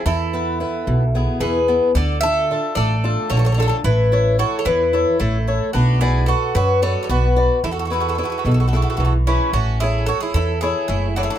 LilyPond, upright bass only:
\new Staff \with { instrumentName = "Upright bass" } { \clef bass \time 7/8 \key a \major \tempo 4 = 111 e,4. b,,4 e,4 | d,4. a,,4 bes,,4 | a,,4. e,4 a,,4 | b,,4. fis,4 b,,4 |
e,4. b,,4 b,,4 | a,,4. e,4 fis,,4 | }